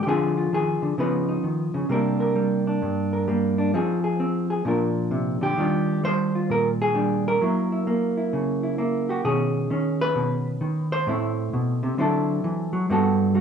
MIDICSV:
0, 0, Header, 1, 2, 480
1, 0, Start_track
1, 0, Tempo, 458365
1, 63, Time_signature, 4, 2, 24, 8
1, 14039, End_track
2, 0, Start_track
2, 0, Title_t, "Hollow-body jazz guitar"
2, 0, Program_c, 0, 26
2, 30, Note_on_c, 0, 67, 67
2, 71, Note_on_c, 0, 50, 68
2, 72, Note_off_c, 0, 67, 0
2, 78, Note_on_c, 0, 53, 46
2, 83, Note_on_c, 0, 60, 42
2, 89, Note_on_c, 0, 68, 82
2, 96, Note_on_c, 0, 65, 45
2, 381, Note_off_c, 0, 65, 0
2, 394, Note_on_c, 0, 65, 41
2, 547, Note_off_c, 0, 50, 0
2, 552, Note_on_c, 0, 51, 54
2, 557, Note_off_c, 0, 68, 0
2, 570, Note_on_c, 0, 68, 82
2, 856, Note_off_c, 0, 51, 0
2, 860, Note_on_c, 0, 50, 55
2, 1013, Note_off_c, 0, 65, 0
2, 1014, Note_off_c, 0, 60, 0
2, 1022, Note_off_c, 0, 50, 0
2, 1022, Note_off_c, 0, 53, 0
2, 1026, Note_on_c, 0, 49, 58
2, 1034, Note_on_c, 0, 53, 43
2, 1038, Note_off_c, 0, 68, 0
2, 1040, Note_on_c, 0, 59, 43
2, 1046, Note_on_c, 0, 71, 71
2, 1049, Note_on_c, 0, 63, 42
2, 1343, Note_off_c, 0, 63, 0
2, 1347, Note_on_c, 0, 63, 41
2, 1502, Note_off_c, 0, 49, 0
2, 1506, Note_on_c, 0, 51, 53
2, 1819, Note_off_c, 0, 51, 0
2, 1824, Note_on_c, 0, 49, 59
2, 1975, Note_off_c, 0, 59, 0
2, 1977, Note_off_c, 0, 49, 0
2, 1981, Note_on_c, 0, 48, 60
2, 1984, Note_off_c, 0, 53, 0
2, 1989, Note_on_c, 0, 55, 53
2, 1995, Note_off_c, 0, 71, 0
2, 1999, Note_off_c, 0, 63, 0
2, 1999, Note_on_c, 0, 58, 51
2, 2004, Note_on_c, 0, 62, 49
2, 2012, Note_on_c, 0, 70, 58
2, 2294, Note_off_c, 0, 70, 0
2, 2307, Note_on_c, 0, 70, 52
2, 2452, Note_off_c, 0, 55, 0
2, 2465, Note_on_c, 0, 55, 52
2, 2786, Note_off_c, 0, 62, 0
2, 2799, Note_on_c, 0, 62, 47
2, 2945, Note_off_c, 0, 48, 0
2, 2954, Note_on_c, 0, 43, 54
2, 3265, Note_off_c, 0, 70, 0
2, 3278, Note_on_c, 0, 70, 48
2, 3419, Note_off_c, 0, 55, 0
2, 3431, Note_off_c, 0, 58, 0
2, 3432, Note_on_c, 0, 55, 55
2, 3443, Note_on_c, 0, 58, 54
2, 3739, Note_off_c, 0, 62, 0
2, 3752, Note_on_c, 0, 62, 55
2, 3891, Note_off_c, 0, 55, 0
2, 3898, Note_off_c, 0, 70, 0
2, 3913, Note_off_c, 0, 43, 0
2, 3915, Note_off_c, 0, 62, 0
2, 3915, Note_on_c, 0, 53, 67
2, 3917, Note_off_c, 0, 58, 0
2, 3922, Note_on_c, 0, 60, 56
2, 3928, Note_on_c, 0, 63, 54
2, 3932, Note_on_c, 0, 68, 58
2, 4218, Note_off_c, 0, 68, 0
2, 4231, Note_on_c, 0, 68, 47
2, 4384, Note_off_c, 0, 60, 0
2, 4396, Note_on_c, 0, 60, 56
2, 4702, Note_off_c, 0, 68, 0
2, 4715, Note_on_c, 0, 68, 55
2, 4855, Note_off_c, 0, 60, 0
2, 4857, Note_off_c, 0, 68, 0
2, 4861, Note_off_c, 0, 63, 0
2, 4869, Note_on_c, 0, 46, 63
2, 4874, Note_off_c, 0, 53, 0
2, 4879, Note_on_c, 0, 53, 43
2, 4888, Note_on_c, 0, 62, 42
2, 4896, Note_on_c, 0, 65, 44
2, 4902, Note_on_c, 0, 70, 42
2, 5352, Note_on_c, 0, 48, 60
2, 5665, Note_off_c, 0, 48, 0
2, 5669, Note_on_c, 0, 50, 55
2, 5680, Note_off_c, 0, 70, 0
2, 5684, Note_on_c, 0, 67, 88
2, 5813, Note_off_c, 0, 46, 0
2, 5823, Note_off_c, 0, 62, 0
2, 5824, Note_off_c, 0, 65, 0
2, 5835, Note_off_c, 0, 50, 0
2, 5837, Note_off_c, 0, 53, 0
2, 5840, Note_on_c, 0, 51, 69
2, 5847, Note_on_c, 0, 55, 43
2, 5852, Note_on_c, 0, 62, 42
2, 5861, Note_on_c, 0, 65, 48
2, 6316, Note_off_c, 0, 55, 0
2, 6320, Note_on_c, 0, 55, 59
2, 6324, Note_off_c, 0, 67, 0
2, 6333, Note_on_c, 0, 72, 105
2, 6642, Note_off_c, 0, 65, 0
2, 6653, Note_on_c, 0, 65, 43
2, 6803, Note_on_c, 0, 46, 52
2, 6805, Note_off_c, 0, 72, 0
2, 6822, Note_on_c, 0, 70, 86
2, 6989, Note_off_c, 0, 70, 0
2, 7138, Note_on_c, 0, 68, 91
2, 7259, Note_off_c, 0, 55, 0
2, 7269, Note_off_c, 0, 62, 0
2, 7271, Note_on_c, 0, 55, 60
2, 7282, Note_on_c, 0, 62, 42
2, 7604, Note_off_c, 0, 68, 0
2, 7623, Note_on_c, 0, 70, 81
2, 7735, Note_off_c, 0, 55, 0
2, 7740, Note_off_c, 0, 51, 0
2, 7740, Note_off_c, 0, 62, 0
2, 7741, Note_off_c, 0, 46, 0
2, 7750, Note_off_c, 0, 65, 0
2, 7765, Note_on_c, 0, 54, 63
2, 7773, Note_on_c, 0, 58, 44
2, 7778, Note_on_c, 0, 64, 43
2, 8074, Note_off_c, 0, 64, 0
2, 8087, Note_on_c, 0, 64, 40
2, 8230, Note_off_c, 0, 58, 0
2, 8243, Note_on_c, 0, 58, 59
2, 8547, Note_off_c, 0, 64, 0
2, 8560, Note_on_c, 0, 64, 39
2, 8725, Note_on_c, 0, 49, 53
2, 9028, Note_off_c, 0, 64, 0
2, 9041, Note_on_c, 0, 64, 38
2, 9185, Note_off_c, 0, 58, 0
2, 9197, Note_on_c, 0, 58, 53
2, 9198, Note_off_c, 0, 64, 0
2, 9211, Note_on_c, 0, 64, 38
2, 9517, Note_off_c, 0, 70, 0
2, 9522, Note_on_c, 0, 67, 40
2, 9528, Note_off_c, 0, 64, 0
2, 9532, Note_on_c, 0, 66, 66
2, 9661, Note_off_c, 0, 49, 0
2, 9662, Note_off_c, 0, 54, 0
2, 9677, Note_off_c, 0, 58, 0
2, 9681, Note_off_c, 0, 66, 0
2, 9681, Note_on_c, 0, 47, 68
2, 9683, Note_off_c, 0, 67, 0
2, 9686, Note_on_c, 0, 68, 87
2, 9691, Note_on_c, 0, 51, 46
2, 9697, Note_on_c, 0, 61, 46
2, 10150, Note_off_c, 0, 51, 0
2, 10153, Note_off_c, 0, 61, 0
2, 10159, Note_off_c, 0, 47, 0
2, 10161, Note_on_c, 0, 51, 61
2, 10168, Note_on_c, 0, 61, 47
2, 10487, Note_on_c, 0, 71, 115
2, 10634, Note_on_c, 0, 47, 58
2, 10951, Note_off_c, 0, 68, 0
2, 11098, Note_off_c, 0, 51, 0
2, 11110, Note_on_c, 0, 51, 59
2, 11114, Note_off_c, 0, 47, 0
2, 11435, Note_off_c, 0, 71, 0
2, 11439, Note_on_c, 0, 72, 109
2, 11571, Note_off_c, 0, 51, 0
2, 11577, Note_off_c, 0, 61, 0
2, 11590, Note_on_c, 0, 45, 66
2, 11601, Note_on_c, 0, 57, 47
2, 11608, Note_on_c, 0, 60, 47
2, 11616, Note_on_c, 0, 64, 49
2, 12070, Note_off_c, 0, 45, 0
2, 12078, Note_on_c, 0, 47, 64
2, 12386, Note_off_c, 0, 47, 0
2, 12388, Note_on_c, 0, 48, 63
2, 12537, Note_off_c, 0, 60, 0
2, 12541, Note_off_c, 0, 64, 0
2, 12544, Note_off_c, 0, 48, 0
2, 12548, Note_on_c, 0, 50, 69
2, 12550, Note_off_c, 0, 57, 0
2, 12554, Note_on_c, 0, 54, 52
2, 12556, Note_off_c, 0, 72, 0
2, 12563, Note_on_c, 0, 60, 56
2, 12570, Note_on_c, 0, 64, 59
2, 12577, Note_on_c, 0, 69, 61
2, 13024, Note_off_c, 0, 50, 0
2, 13029, Note_on_c, 0, 52, 64
2, 13326, Note_off_c, 0, 54, 0
2, 13330, Note_on_c, 0, 54, 66
2, 13339, Note_off_c, 0, 52, 0
2, 13492, Note_off_c, 0, 60, 0
2, 13495, Note_off_c, 0, 64, 0
2, 13501, Note_off_c, 0, 54, 0
2, 13506, Note_on_c, 0, 43, 75
2, 13512, Note_on_c, 0, 55, 60
2, 13519, Note_on_c, 0, 59, 57
2, 13524, Note_on_c, 0, 66, 61
2, 13528, Note_off_c, 0, 69, 0
2, 13532, Note_on_c, 0, 69, 68
2, 13964, Note_off_c, 0, 55, 0
2, 13976, Note_on_c, 0, 55, 68
2, 13979, Note_off_c, 0, 66, 0
2, 13984, Note_on_c, 0, 66, 61
2, 14039, Note_off_c, 0, 43, 0
2, 14039, Note_off_c, 0, 55, 0
2, 14039, Note_off_c, 0, 59, 0
2, 14039, Note_off_c, 0, 66, 0
2, 14039, Note_off_c, 0, 69, 0
2, 14039, End_track
0, 0, End_of_file